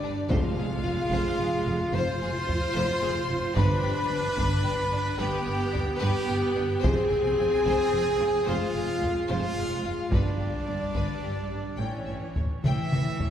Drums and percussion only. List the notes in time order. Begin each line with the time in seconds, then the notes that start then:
0.30 taiko
1.11 taiko
2.48 taiko low
3.57 taiko
3.84 taiko rim
4.38 taiko
4.92 taiko rim
5.75 taiko low
6.84 taiko
7.66 taiko
8.20 taiko rim
9.02 taiko low
9.30 taiko rim
10.12 taiko
10.95 taiko
12.36 taiko low
12.64 taiko mid
12.92 taiko mid
13.20 taiko low